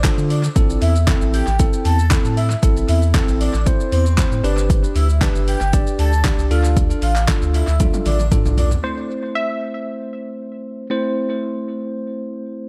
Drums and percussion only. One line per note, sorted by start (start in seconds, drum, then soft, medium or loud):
0.04 kick loud
0.04 snare medium
0.04 clap loud
0.04 closed hi-hat medium
0.04 shaker medium
0.18 shaker medium
0.30 open hi-hat medium
0.30 shaker soft
0.44 shaker medium
0.56 kick loud
0.56 closed hi-hat medium
0.56 shaker medium
0.70 shaker medium
0.82 open hi-hat medium
0.82 shaker medium
0.96 shaker medium
1.07 kick loud
1.07 snare medium
1.07 clap loud
1.07 closed hi-hat medium
1.07 shaker medium
1.21 shaker medium
1.34 open hi-hat medium
1.34 shaker medium
1.47 shaker medium
1.59 kick loud
1.59 closed hi-hat medium
1.59 shaker medium
1.73 shaker medium
1.85 open hi-hat medium
1.85 shaker medium
1.99 shaker medium
2.10 kick loud
2.10 snare medium
2.10 clap loud
2.10 closed hi-hat medium
2.10 shaker medium
2.25 shaker medium
2.37 open hi-hat medium
2.37 shaker soft
2.51 shaker medium
2.63 kick loud
2.63 closed hi-hat medium
2.63 shaker medium
2.77 shaker medium
2.89 open hi-hat medium
2.89 shaker medium
3.02 shaker medium
3.14 kick loud
3.14 snare medium
3.14 clap loud
3.14 closed hi-hat medium
3.14 shaker medium
3.29 shaker medium
3.41 open hi-hat medium
3.41 shaker medium
3.54 shaker medium
3.66 kick loud
3.66 closed hi-hat medium
3.66 shaker medium
3.80 shaker medium
3.92 open hi-hat medium
3.92 shaker medium
4.06 shaker medium
4.18 kick loud
4.18 snare medium
4.18 clap loud
4.18 closed hi-hat medium
4.18 shaker medium
4.32 shaker medium
4.44 open hi-hat medium
4.44 shaker soft
4.58 shaker medium
4.70 kick loud
4.70 closed hi-hat medium
4.70 shaker medium
4.84 shaker medium
4.96 open hi-hat medium
4.96 shaker medium
5.10 shaker medium
5.21 kick loud
5.21 snare loud
5.21 clap loud
5.21 closed hi-hat medium
5.21 shaker medium
5.35 shaker medium
5.48 open hi-hat medium
5.48 shaker medium
5.61 shaker medium
5.73 kick loud
5.73 closed hi-hat medium
5.73 shaker medium
5.87 shaker medium
5.99 open hi-hat medium
5.99 shaker medium
6.13 shaker medium
6.24 kick loud
6.24 snare medium
6.24 clap loud
6.24 closed hi-hat medium
6.24 shaker medium
6.39 shaker medium
6.51 open hi-hat medium
6.51 shaker soft
6.65 shaker medium
6.77 kick loud
6.77 closed hi-hat medium
6.77 shaker medium
6.91 shaker medium
7.02 open hi-hat medium
7.02 shaker medium
7.16 clap medium
7.16 shaker medium
7.28 kick loud
7.28 snare medium
7.28 clap loud
7.28 closed hi-hat medium
7.28 shaker medium
7.42 shaker medium
7.54 open hi-hat medium
7.54 shaker medium
7.68 shaker medium
7.80 kick loud
7.80 closed hi-hat medium
7.80 high tom medium
7.80 shaker medium
7.94 high tom medium
7.94 shaker medium
8.06 open hi-hat medium
8.06 mid tom medium
8.06 shaker medium
8.20 mid tom medium
8.20 shaker medium
8.32 kick loud
8.32 closed hi-hat medium
8.32 mid tom loud
8.32 shaker medium
8.46 mid tom medium
8.46 shaker medium
8.58 floor tom loud
8.58 open hi-hat medium
8.58 shaker soft
8.71 floor tom loud
8.71 shaker medium